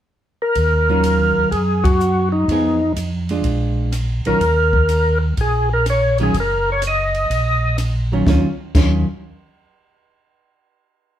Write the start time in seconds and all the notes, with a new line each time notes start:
0.42 A#4
0.55 D#2, kick, ride
0.89 D#3 F#3 C#4 F4
1.04 hi-hat pedal, ride
1.37 D#2
1.51 F#2 G#4, kick, ride
1.84 F#4, kick, ride
2.00 hi-hat pedal
2.32 D#4
2.48 F2 F3 B3 G#4, kick, ride
2.52 D#4
2.96 F2, hi-hat pedal, ride
3.29 G#3 D4 F4, ride
3.44 A#1, kick, ride
3.92 cross-stick, hi-hat pedal, ride
4.25 A#1 D#3 F#3 C#4 F4 A#4, ride
4.41 D#2, kick, ride
4.73 kick
4.89 hi-hat pedal, ride
5.37 A#1 G#4, kick, ride
5.73 A#4
5.86 C#5, cross-stick, hi-hat pedal, ride
6.18 D#3 F#3 C#4 F4, ride
6.23 G#4
6.34 F#1, kick, ride
6.40 A#4
6.72 C#5
6.82 hi-hat pedal, ride
6.87 D#5
7.15 ride
7.30 A#1, kick, ride
7.78 cross-stick, hi-hat pedal, ride
8.12 D#3 F#3 C#4 F4
8.27 D#2 D#3 F#3 C#4 F4, kick, snare
8.75 D#2 D#3 F#3 C#4 F4, kick, snare, crash